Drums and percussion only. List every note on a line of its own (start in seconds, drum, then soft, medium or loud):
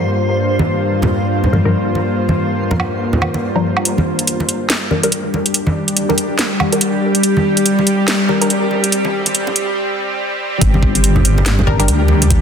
0.59 high conga loud
1.02 muted conga medium
1.02 low conga medium
1.44 low conga medium
1.53 high conga medium
1.95 muted conga soft
2.29 high conga medium
2.71 muted conga medium
2.71 low conga medium
2.80 low woodblock medium
3.13 low conga medium
3.22 high conga medium
3.22 low woodblock medium
3.34 muted conga medium
3.77 low woodblock medium
3.85 closed hi-hat medium
3.98 high conga loud
4.19 closed hi-hat medium
4.27 closed hi-hat medium
4.40 muted conga medium
4.49 closed hi-hat medium
4.70 snare loud
4.70 closed hi-hat medium
4.91 high conga medium
5.03 closed hi-hat medium
5.12 closed hi-hat medium
5.34 muted conga medium
5.46 closed hi-hat medium
5.54 closed hi-hat medium
5.67 high conga loud
5.88 closed hi-hat medium
5.97 closed hi-hat medium
6.10 muted conga medium
6.18 closed hi-hat medium
6.39 snare loud
6.39 closed hi-hat medium
6.60 high conga medium
6.60 low woodblock medium
6.72 closed hi-hat medium
6.81 closed hi-hat medium
7.15 closed hi-hat medium
7.23 closed hi-hat medium
7.37 high conga loud
7.57 closed hi-hat medium
7.66 closed hi-hat medium
7.79 muted conga medium
7.87 closed hi-hat medium
8.08 snare loud
8.08 closed hi-hat medium
8.29 high conga medium
8.42 closed hi-hat medium
8.50 closed hi-hat medium
8.71 muted conga soft
8.84 closed hi-hat medium
8.92 closed hi-hat medium
9.05 high conga loud
9.26 closed hi-hat medium
9.26 high conga medium
9.35 closed hi-hat medium
9.47 muted conga medium
9.47 low conga medium
9.56 closed hi-hat medium
10.61 kick loud
10.61 closed hi-hat medium
10.74 high conga medium
10.83 kick loud
10.95 closed hi-hat medium
11.04 closed hi-hat medium
11.16 low conga medium
11.25 closed hi-hat medium
11.38 muted conga medium
11.46 snare loud
11.46 closed hi-hat medium
11.59 low conga medium
11.67 kick medium
11.67 high conga medium
11.80 closed hi-hat medium
11.88 closed hi-hat medium
12.08 muted conga medium
12.22 closed hi-hat medium
12.22 muted conga medium
12.30 kick loud
12.30 closed hi-hat medium